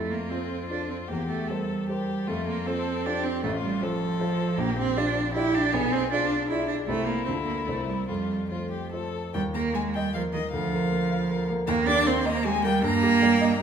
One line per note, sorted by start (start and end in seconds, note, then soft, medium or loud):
0.00 0.30 F2 soft
0.00 0.12 A3 medium
0.00 1.09 F4 soft
0.11 0.32 A#3 medium
0.30 0.69 C4 soft
0.30 0.66 F4 soft
0.30 0.66 A4 soft
0.30 0.66 C5 soft
0.70 0.89 D4 medium
0.70 1.06 F4 soft
0.70 1.06 A4 soft
0.70 1.06 C5 soft
0.89 0.97 C4 soft
1.08 1.48 E2 soft
1.08 1.28 A#3 medium
1.08 1.49 G4 soft
1.29 1.52 A3 medium
1.48 2.29 G3 medium
1.48 1.85 G4 soft
1.48 1.88 A4 soft
1.48 1.86 A#4 soft
1.48 1.86 C5 soft
1.89 2.29 G4 soft
1.89 2.24 G4 soft
1.89 2.25 A#4 soft
1.89 2.25 C5 soft
2.27 2.66 F2 soft
2.27 2.46 A3 medium
2.27 2.68 F4 soft
2.47 2.68 A#3 medium
2.66 3.07 C4 medium
2.66 3.02 F4 soft
2.66 3.07 A4 soft
2.66 3.02 A4 soft
2.66 3.02 C5 soft
3.06 3.25 D4 medium
3.06 3.40 F4 soft
3.06 3.44 G4 soft
3.06 3.41 A4 soft
3.06 3.41 C5 soft
3.23 3.43 C4 medium
3.43 3.81 A1 medium
3.43 3.51 A3 medium
3.43 3.84 F4 medium
3.63 3.85 G3 medium
3.82 4.59 F3 medium
3.82 4.17 F4 soft
3.82 4.17 A4 soft
3.82 4.61 A4 medium
3.82 4.17 C5 soft
4.20 4.54 F4 soft
4.20 4.55 A4 soft
4.20 4.55 C5 soft
4.58 4.95 A#1 medium
4.58 4.77 A#3 medium
4.58 4.98 G4 medium
4.79 4.99 C4 medium
4.96 5.33 D4 medium
4.96 5.31 F4 soft
4.96 5.33 F4 soft
4.96 5.31 G4 soft
4.96 5.32 D5 soft
5.34 5.56 E4 medium
5.34 5.70 F4 soft
5.34 5.74 G4 medium
5.34 5.70 G4 soft
5.34 5.70 D5 soft
5.54 5.75 D4 medium
5.72 6.10 B1 medium
5.72 5.94 B3 medium
5.72 6.11 G#4 medium
5.92 6.10 C4 medium
6.11 6.49 D4 medium
6.11 6.49 F4 soft
6.11 6.46 F4 soft
6.11 6.47 G#4 soft
6.11 6.47 D5 soft
6.49 6.91 D4 soft
6.49 6.67 E4 medium
6.49 6.85 F4 soft
6.49 6.85 G#4 soft
6.49 6.85 D5 soft
6.68 6.76 D4 medium
6.87 7.26 C2 soft
6.87 7.07 A3 medium
6.87 7.24 E4 soft
6.87 8.08 E4 medium
6.87 7.24 G4 soft
6.87 7.24 C5 soft
7.06 7.24 A#3 medium
7.25 7.67 D2 soft
7.25 7.33 C4 medium
7.25 7.64 D4 soft
7.29 7.64 F4 soft
7.29 7.64 A4 soft
7.45 7.65 A#3 medium
7.66 8.08 C2 soft
7.66 7.86 A3 soft
7.66 8.05 A#3 soft
7.66 8.05 E4 soft
7.66 8.05 C5 soft
7.87 8.06 G3 medium
8.06 8.50 F2 soft
8.06 8.50 G3 medium
8.06 8.46 F4 soft
8.49 9.13 F3 soft
8.49 8.89 A3 soft
8.49 8.70 F4 soft
8.49 8.89 F4 soft
8.49 8.89 C5 soft
8.71 8.91 G4 soft
8.92 9.31 A3 soft
8.92 9.31 F4 soft
8.92 9.33 A4 soft
8.92 9.31 C5 soft
9.34 10.49 D#2 soft
9.34 9.42 G3 medium
9.34 9.42 G5 medium
9.54 9.76 A#3 medium
9.54 9.87 A#4 soft
9.54 9.63 A#5 medium
9.74 9.97 G#3 medium
9.74 10.07 A#3 soft
9.74 9.83 G#5 medium
9.95 10.13 G3 medium
9.95 10.26 D#5 soft
9.95 10.14 G5 medium
10.14 10.22 F3 medium
10.14 10.46 A#4 soft
10.14 10.22 F5 medium
10.33 10.41 D#3 medium
10.33 10.53 A#3 soft
10.33 10.51 D#5 medium
10.52 11.65 D2 soft
10.52 11.47 F3 medium
10.52 11.47 F5 medium
10.73 11.03 A#4 soft
10.92 11.23 A#3 soft
11.11 11.42 F5 soft
11.31 11.61 A#4 soft
11.50 11.69 A#3 medium
11.67 12.80 D#2 medium
11.67 11.88 A#3 medium
11.67 11.75 A#5 medium
11.87 12.08 D4 loud
11.87 12.18 G4 medium
11.87 12.08 D6 medium
12.06 12.38 A#3 soft
12.06 12.27 C4 medium
12.06 12.27 C6 medium
12.26 12.47 A#3 medium
12.26 12.57 D#5 medium
12.26 12.47 A#5 medium
12.45 12.66 G#3 medium
12.45 12.76 G4 medium
12.45 12.64 G#5 medium
12.64 12.84 G3 medium
12.64 12.84 A#3 medium
12.64 12.83 G5 medium
12.83 13.62 G2 medium
12.83 13.62 A#3 loud
12.83 13.62 A#5 medium
13.03 13.34 G4 medium
13.22 13.53 G3 medium
13.41 13.62 D#5 medium